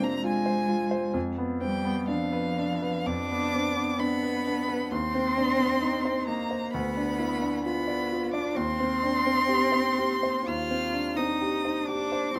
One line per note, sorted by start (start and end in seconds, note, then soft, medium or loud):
0.00 1.18 C3 medium
0.00 0.22 A#3 medium
0.00 1.18 C4 medium
0.00 1.17 D4 soft
0.00 0.24 F4 medium
0.00 0.46 C5 medium
0.00 0.25 A#5 medium
0.23 1.13 G#3 medium
0.23 0.60 F4 medium
0.23 1.15 G#5 medium
0.46 0.83 C5 medium
0.69 1.06 F4 medium
0.91 1.15 C5 medium
1.14 3.02 F2 medium
1.38 1.75 B3 medium
1.61 2.11 G3 medium
1.61 1.84 C4 soft
1.61 2.05 G5 medium
1.85 2.23 B3 medium
2.08 3.10 F3 medium
2.08 2.47 D4 medium
2.08 3.08 F5 medium
2.32 2.73 B4 medium
2.58 2.98 D4 medium
2.82 3.21 B4 medium
3.07 4.87 F2 medium
3.07 4.01 D4 medium
3.07 4.01 D6 loud
3.31 3.68 B3 soft
3.55 3.77 C4 soft
3.76 4.13 B3 soft
3.99 4.93 B3 medium
3.99 4.37 D4 medium
3.99 4.92 B5 loud
4.23 4.60 B4 medium
4.47 4.83 D4 medium
4.68 4.91 B4 medium
4.91 6.69 D#2 medium
4.91 6.29 C4 medium
4.91 6.27 C6 loud
5.15 5.51 C4 medium
5.38 5.60 D4 soft
5.60 5.96 C4 soft
5.82 6.19 D#4 medium
6.05 6.42 C5 medium
6.27 6.75 A#3 medium
6.27 6.64 D#4 medium
6.27 6.72 A#5 medium
6.51 6.73 C5 soft
6.73 8.54 D2 medium
6.73 7.65 B3 medium
6.73 7.63 B5 loud
6.97 7.33 D4 medium
7.19 7.42 E4 soft
7.42 7.79 D4 soft
7.65 8.35 B3 medium
7.65 8.02 F4 medium
7.65 8.33 B5 medium
7.88 8.25 D5 soft
8.12 8.48 F4 soft
8.34 8.57 D4 medium
8.34 8.57 D5 medium
8.34 8.58 D6 medium
8.55 10.43 D#2 medium
8.55 10.46 C4 loud
8.55 10.49 C6 loud
8.80 9.17 C4 medium
9.03 9.26 D4 soft
9.27 9.64 C4 medium
9.49 9.88 G4 medium
9.72 10.13 C5 medium
9.99 10.38 G4 medium
10.23 10.62 C5 medium
10.47 12.31 D#2 medium
10.47 11.18 F4 medium
10.47 11.18 F6 loud
10.71 11.08 C4 soft
10.93 11.17 D4 soft
11.16 11.55 C4 soft
11.16 11.88 D#4 medium
11.16 11.89 D#6 medium
11.41 11.79 G4 soft
11.65 12.03 C5 soft
11.86 12.34 D4 medium
11.86 12.26 G4 soft
11.86 12.36 D6 medium
12.12 12.36 C5 medium
12.34 12.39 E2 medium
12.34 12.39 C4 medium
12.34 12.39 C6 loud